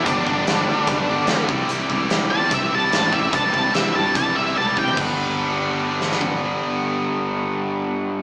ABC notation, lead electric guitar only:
X:1
M:4/4
L:1/8
Q:1/4=146
K:G
V:1 name="Lead electric guitar"
D D6 z | z3 a e a a e | a a e a a e a g | z8 |
z8 |]